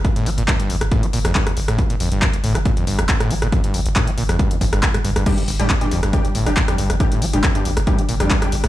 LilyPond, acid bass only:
\new Staff \with { instrumentName = "Acid bass" } { \clef bass \time 4/4 \key g \minor \tempo 4 = 138 g,,16 a,16 g16 bes,16 f,16 g,16 f,16 g,,16 a,16 g16 bes,16 f,16 g,16 f,16 g,,16 a,16 | g16 bes,16 f,16 g,16 f,16 g,,16 a,16 g16 bes,16 f,16 g,16 f,16 g,,16 a,16 g16 bes,16 | f,16 g,16 f,16 g,,16 a,16 g16 bes,16 f,16 g,16 f,16 g,16 g,16 g,16 g,16 g,16 g,16 | g,16 f,16 g,,16 a,16 g16 bes,16 f,16 g,16 f,16 g,,16 a,16 g16 bes,16 f,16 g,16 f,16 |
g,,16 a,16 g16 bes,16 f,16 g,16 f,16 g,,16 a,16 g16 bes,16 f,16 g,16 f,16 g,,16 a,16 | }